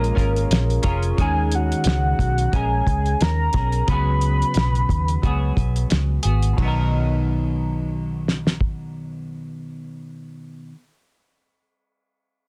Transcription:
0.00 0.10 A#1 medium
0.00 0.86 G#3 medium
0.00 0.15 C#4 medium
0.00 0.86 C#4 medium
0.00 0.16 F4 medium
0.00 0.84 F4 medium
0.00 0.17 G#4 medium
0.00 0.18 A#4 medium
0.00 0.83 A#4 medium
0.00 0.86 A#4 medium
0.00 closed hi-hat soft
0.15 0.44 G#1 medium
0.15 0.58 C#4 medium
0.15 0.59 F4 medium
0.15 0.59 G#4 medium
0.15 0.60 A#4 medium
0.15 kick medium
0.15 closed hi-hat medium
0.36 closed hi-hat soft
0.50 0.77 A#1 medium
0.50 snare medium
0.50 closed hi-hat medium
0.70 closed hi-hat soft
0.82 1.11 F1 medium
0.82 1.06 C#4 medium
0.82 1.06 F4 medium
0.82 1.19 F4 medium
0.82 1.06 G#4 medium
0.82 1.18 A#4 soft
0.82 1.07 C#5 medium
0.82 kick medium
0.82 closed hi-hat medium
0.87 1.19 C#4 soft
1.03 closed hi-hat soft
1.17 1.72 D#2 medium
1.17 2.52 D#3 medium
1.17 2.51 G#3 medium
1.17 2.53 C#4 medium
1.17 kick medium
1.17 closed hi-hat medium
1.21 2.54 G#4 medium
1.21 2.54 A#4 medium
1.21 1.56 G#5 medium
1.52 1.87 F#5 medium
1.52 closed hi-hat medium
1.72 closed hi-hat soft
1.84 2.12 C#2 medium
1.84 2.57 F#5 medium
1.84 snare loud
1.84 closed hi-hat medium
2.19 2.46 B1 medium
2.19 kick medium
2.19 closed hi-hat medium
2.38 closed hi-hat soft
2.52 2.80 A#1 medium
2.52 3.56 G#3 medium
2.52 3.57 C#4 medium
2.52 3.55 G#4 medium
2.52 3.52 A#4 medium
2.52 3.23 G#5 medium
2.52 kick medium
2.52 closed hi-hat medium
2.87 3.14 C#2 medium
2.87 kick medium
2.87 closed hi-hat medium
3.06 closed hi-hat soft
3.21 3.48 D#2 medium
3.21 3.89 A#5 loud
3.21 snare loud
3.21 closed hi-hat medium
3.53 3.81 B1 medium
3.53 3.89 G#4 soft
3.53 3.88 A#4 soft
3.53 kick medium
3.53 snare soft
3.53 closed hi-hat medium
3.57 3.89 C#4 soft
3.72 closed hi-hat soft
3.87 4.42 C#2 medium
3.87 5.22 C#3 medium
3.87 5.22 F#3 medium
3.87 5.23 B3 medium
3.87 5.87 B5 loud
3.87 kick medium
3.87 closed hi-hat medium
3.91 5.24 F#4 medium
3.91 5.25 G#4 medium
4.21 closed hi-hat medium
4.42 closed hi-hat soft
4.54 4.82 B1 medium
4.54 snare loud
4.54 closed hi-hat medium
4.75 closed hi-hat soft
4.89 5.16 D#2 medium
4.89 kick medium
4.89 closed hi-hat medium
5.08 closed hi-hat soft
5.22 5.50 C#2 medium
5.22 6.26 F#3 medium
5.22 6.26 B3 medium
5.22 6.25 F#4 medium
5.22 6.22 G#4 medium
5.22 kick medium
5.22 closed hi-hat medium
5.57 5.84 B1 medium
5.57 kick medium
5.57 closed hi-hat medium
5.76 closed hi-hat soft
5.90 6.18 C#2 medium
5.90 snare loud
5.90 closed hi-hat medium
6.23 6.51 G#1 medium
6.23 6.59 B3 soft
6.23 6.58 F#4 soft
6.23 6.57 G#4 soft
6.23 closed hi-hat medium
6.43 closed hi-hat soft
6.53 10.71 B2 medium
6.53 10.75 D#3 medium
6.58 10.72 B1 medium
6.58 10.78 F#3 medium
6.58 kick medium
6.58 ride medium
6.62 10.80 B3 medium
6.62 10.82 D#4 medium
6.68 10.83 A#4 medium
8.28 snare soft
8.47 snare medium
8.61 kick medium

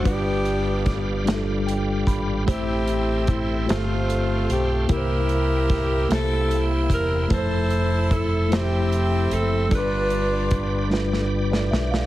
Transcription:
0.00 1.07 G3 medium
0.00 1.08 D4 medium
0.00 2.44 D5 medium
0.04 2.03 G1 medium
0.04 1.22 G2 medium
0.04 1.23 B3 medium
0.04 1.23 D4 medium
0.04 1.08 F4 medium
0.04 2.45 G4 medium
0.04 1.23 G4 medium
0.04 1.09 B4 medium
0.04 2.45 F5 medium
0.04 2.44 B5 medium
0.04 kick medium
0.04 closed hi-hat medium
0.45 closed hi-hat soft
0.86 kick medium
0.86 snare soft
0.86 closed hi-hat medium
1.25 2.29 G3 medium
1.25 2.29 D4 medium
1.25 2.30 F4 medium
1.25 1.34 G4 medium
1.25 snare loud
1.25 closed hi-hat medium
1.34 2.33 A4 medium
1.67 2.04 G5 medium
1.67 closed hi-hat medium
2.07 2.44 G#1 medium
2.07 2.45 B5 medium
2.07 kick medium
2.07 closed hi-hat medium
2.46 3.64 A1 loud
2.46 3.64 A2 medium
2.46 3.50 A3 medium
2.46 3.65 C4 medium
2.46 3.50 E4 medium
2.46 3.28 E4 medium
2.46 3.50 G4 medium
2.46 3.25 G4 medium
2.46 4.86 A4 medium
2.46 3.51 C5 medium
2.46 3.67 E5 medium
2.46 7.26 G5 soft
2.46 4.87 C6 medium
2.46 kick medium
2.46 closed hi-hat medium
2.87 closed hi-hat soft
3.27 3.69 E4 medium
3.27 kick medium
3.27 closed hi-hat medium
3.66 4.45 G1 medium
3.66 4.85 G2 medium
3.66 4.70 A3 medium
3.66 4.86 A3 medium
3.66 4.86 C4 medium
3.66 4.71 F4 medium
3.66 4.71 G4 medium
3.66 4.71 C5 medium
3.66 4.88 F5 medium
3.66 closed hi-hat medium
3.70 4.50 F4 medium
3.70 snare loud
4.10 closed hi-hat medium
4.49 4.86 B1 medium
4.49 4.88 G4 medium
4.49 closed hi-hat medium
4.88 6.06 C2 medium
4.88 6.06 C3 medium
4.88 5.91 A#3 medium
4.88 7.28 A#3 medium
4.88 5.92 E4 medium
4.88 6.06 E4 medium
4.88 5.92 G4 medium
4.88 6.06 G4 medium
4.88 4.97 A#4 medium
4.88 6.11 A#4 medium
4.88 9.67 E5 soft
4.88 9.68 C6 medium
4.88 kick medium
4.88 closed hi-hat medium
4.97 5.96 C5 medium
5.29 closed hi-hat soft
5.70 kick medium
5.70 snare soft
5.70 closed hi-hat medium
6.09 6.86 C2 medium
6.09 7.27 C3 medium
6.09 7.12 A#3 medium
6.09 7.12 E4 medium
6.09 7.27 E4 medium
6.09 7.13 G4 medium
6.09 6.64 A4 medium
6.09 7.13 C5 medium
6.09 snare medium
6.09 closed hi-hat medium
6.51 closed hi-hat medium
6.90 7.27 E1 medium
6.90 7.29 A#4 medium
6.90 kick medium
6.90 closed hi-hat medium
7.28 9.28 F1 medium
7.28 8.33 F3 medium
7.28 8.32 A3 medium
7.28 8.32 E4 medium
7.28 8.48 E4 medium
7.28 9.69 A4 medium
7.28 8.11 A4 medium
7.28 7.37 B4 medium
7.28 kick medium
7.28 closed hi-hat medium
7.33 8.12 C5 medium
7.38 8.37 C5 medium
7.70 closed hi-hat soft
8.11 8.52 A4 medium
8.11 kick medium
8.11 closed hi-hat medium
8.49 9.54 F3 medium
8.49 9.52 A3 medium
8.49 9.68 C4 medium
8.49 9.53 E4 medium
8.49 9.68 E4 medium
8.49 9.54 C5 medium
8.49 closed hi-hat medium
8.53 9.32 G4 medium
8.53 snare loud
8.92 closed hi-hat medium
9.31 9.68 F#1 medium
9.31 9.72 A4 medium
9.31 closed hi-hat medium
9.69 11.68 G1 medium
9.69 10.88 G2 medium
9.69 10.73 G3 medium
9.69 10.73 D4 medium
9.69 10.74 F4 medium
9.69 12.06 G4 medium
9.69 9.78 A4 medium
9.69 12.06 D5 medium
9.69 12.06 B5 medium
9.69 kick medium
9.69 closed hi-hat medium
9.73 10.89 D4 medium
9.73 10.89 F4 medium
9.73 10.89 B4 medium
9.78 10.77 B4 medium
10.10 closed hi-hat soft
10.51 kick medium
10.51 closed hi-hat medium
10.90 11.93 G3 medium
10.90 11.94 D4 medium
10.90 11.94 F4 medium
10.90 11.33 B4 medium
10.90 snare medium
11.13 snare soft
11.52 11.71 B4 medium
11.52 11.71 D5 medium
11.52 snare medium
11.71 12.06 B1 medium
11.71 11.91 E5 medium
11.71 snare medium
11.91 12.06 D5 soft
11.91 12.06 F5 medium
11.91 snare medium

